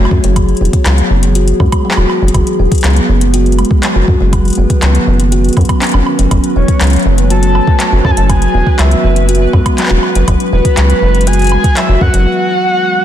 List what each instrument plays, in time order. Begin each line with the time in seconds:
Already playing: ambient pad F#3 A3 G#4 C#5
0.05 high woodblock
0.11 acid bass F#2, kick
0.24 acid bass F#1, kalimba F#3, closed hi-hat
0.36 ambient pad E3, kalimba F#3, kick, closed hi-hat, high woodblock
0.49 closed hi-hat
0.55 ambient pad B3, closed hi-hat
0.61 acid bass E1, kalimba B3
0.65 closed hi-hat
0.73 kick, closed hi-hat
0.86 acid bass C#2, kalimba F#3, clap, closed hi-hat, high woodblock
0.98 kalimba F#3, closed hi-hat
1.10 acid bass F#1
1.23 kalimba E3, closed hi-hat
1.35 kalimba F#4, closed hi-hat
1.48 closed hi-hat
1.60 acid bass F#2, kalimba G#3, kick, high woodblock
1.72 kick, closed hi-hat, high woodblock
1.85 kalimba F#3
1.91 clap
1.97 acid bass E1, kalimba F#4, high woodblock
2.10 high woodblock
2.22 acid bass F#1, kalimba F#3
2.28 closed hi-hat
2.34 acid bass F#1, kalimba F#3, kick, closed hi-hat, high woodblock
2.47 closed hi-hat
2.59 acid bass E1, kalimba B3
2.64 ambient pad G#3 B4
2.72 kick, closed hi-hat
2.75 closed hi-hat
2.78 closed hi-hat
2.81 acid bass C#2, kalimba F#3, clap, closed hi-hat
2.84 closed hi-hat
2.90 closed hi-hat
2.93 closed hi-hat
2.96 kalimba F#3, closed hi-hat
3.09 acid bass F#1
3.21 kalimba E3, closed hi-hat
3.34 kalimba F#4, closed hi-hat
3.46 closed hi-hat
3.52 closed hi-hat
3.58 kalimba G#3, closed hi-hat, high woodblock
3.65 closed hi-hat
3.71 kick
3.83 kalimba F#3, clap, closed hi-hat
3.96 acid bass F#1, kalimba F#4
4.08 acid bass F#2, kick
4.20 acid bass F#1, kalimba F#3
4.33 ambient pad D#3, kalimba F#3, kick, closed hi-hat, high woodblock
4.45 closed hi-hat
4.48 closed hi-hat
4.50 closed hi-hat
4.53 closed hi-hat
4.55 acid bass F#1, kalimba B3, closed hi-hat
4.62 ambient pad C#4
4.70 kick, closed hi-hat
4.82 acid bass C#2, kalimba F#3, clap, closed hi-hat, high woodblock
4.95 kalimba F#3, closed hi-hat
5.07 acid bass F#1
5.19 kalimba D#3, ambient pad F#4, closed hi-hat
5.32 kalimba F#4, closed hi-hat
5.44 closed hi-hat
5.49 closed hi-hat
5.53 kalimba F#3, closed hi-hat
5.57 acid bass F#2, kick, closed hi-hat, high woodblock
5.61 closed hi-hat
5.65 closed hi-hat
5.69 kick, closed hi-hat, high woodblock
5.81 kalimba C#4, clap, closed hi-hat
5.84 closed hi-hat
5.87 closed hi-hat
5.89 closed hi-hat
5.92 acid bass F#1, kalimba C#4, closed hi-hat, high woodblock
6.06 high woodblock
6.19 acid bass F#1, kalimba F#3, closed hi-hat
6.31 acid bass F#1, kalimba F#3, ambient pad F#3, synth texture B4, kick, closed hi-hat, high woodblock
6.44 ambient pad A3, closed hi-hat
6.56 acid bass E1, kalimba B3, soft synth lead C#5
6.68 kick, closed hi-hat
6.81 acid bass C#2, kalimba F#3, clap, closed hi-hat
6.84 closed hi-hat
6.87 closed hi-hat
6.90 kalimba F#3, closed hi-hat
6.93 closed hi-hat
6.96 closed hi-hat
6.99 closed hi-hat
7.02 acid bass F#1, closed hi-hat
7.17 kalimba E3, ambient pad F#4 C#5, closed hi-hat
7.30 kalimba F#4, soft synth lead A5, closed hi-hat
7.43 closed hi-hat
7.55 kalimba A3, high woodblock
7.67 kick
7.80 kalimba F#3, clap, closed hi-hat
7.92 acid bass F#1, kalimba F#4
8.05 acid bass F#2, soft synth lead A5, kick, high woodblock
8.11 soft synth lead G#5
8.17 acid bass F#1, kalimba F#3, soft synth lead A5, closed hi-hat
8.29 ambient pad E3, kalimba F#3, soft synth lead G#5, kick, closed hi-hat, high woodblock
8.42 closed hi-hat
8.52 acid bass E1, kalimba B3, ambient pad B4
8.59 ambient pad B3
8.67 kick
8.79 acid bass C#2, kalimba F#3, soft synth lead E5, clap, closed hi-hat, high woodblock
8.91 kalimba F#3, closed hi-hat
9.04 acid bass F#1
9.16 kalimba E3, closed hi-hat
9.29 kalimba F#4, closed hi-hat
9.35 closed hi-hat
9.53 acid bass F#2, kalimba G#3, kick, high woodblock
9.66 kick, closed hi-hat, high woodblock
9.78 kalimba F#3, clap, closed hi-hat
9.81 clap
9.83 clap
9.86 clap
9.88 acid bass E1, kalimba F#4, clap
10.03 high woodblock
10.15 acid bass F#1, kalimba F#3, closed hi-hat
10.28 acid bass F#1, kalimba F#3, kick, closed hi-hat, high woodblock
10.40 closed hi-hat
10.53 acid bass E1, kalimba B3, soft synth lead B4
10.60 ambient pad G#3
10.65 kick, closed hi-hat
10.77 acid bass C#2, kalimba F#3, clap, closed hi-hat
10.90 kalimba F#3, closed hi-hat
11.02 acid bass F#1
11.15 kalimba E3, closed hi-hat
11.21 closed hi-hat
11.27 kalimba F#4, soft synth lead G#5, closed hi-hat
11.33 closed hi-hat
11.39 closed hi-hat
11.42 closed hi-hat
11.44 closed hi-hat
11.47 closed hi-hat
11.49 kalimba G#3, closed hi-hat, high woodblock
11.64 kick, closed hi-hat
11.77 kalimba F#3, soft synth lead E5, clap, closed hi-hat
11.89 acid bass F#1, kalimba F#4
12.01 acid bass F#2, soft synth lead F#5, kick
12.14 acid bass F#1, kalimba F#3, closed hi-hat